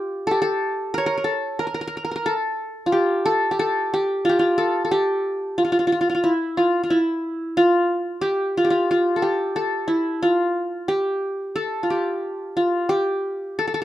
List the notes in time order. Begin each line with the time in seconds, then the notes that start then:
Already playing: F4 G4
0.27 A4
0.31 G4
0.42 A4
0.94 A#4 C#5
1.06 A#4
1.18 A#4
1.24 A4
1.59 A#4
1.67 A#4
1.74 A#4
1.81 A#4
1.87 A#4
1.97 A#4
2.05 A#4
2.11 A#4
2.16 A#4
2.26 A4
2.86 F4
2.92 G4
3.25 A4
3.51 G4
3.59 A4
3.94 G4
4.25 F4
4.29 G4
4.39 F4
4.58 A4
4.85 A4
4.91 G4
5.58 F4
5.65 F4
5.72 F4
5.79 F4
5.87 F4
5.92 F4
6.01 F4
6.10 F4
6.15 F4
6.24 E4
6.57 F4
6.83 F4
6.90 E4
7.57 F4
8.21 G4
8.57 F4
8.65 G4
8.70 F4
8.91 F4
9.16 A4
9.22 G4
9.56 A4
9.88 E4
10.22 F4
10.88 G4
11.56 A4
11.83 F4
11.90 G4
12.57 F4
12.89 G4
13.59 A4
13.67 A4
13.74 A4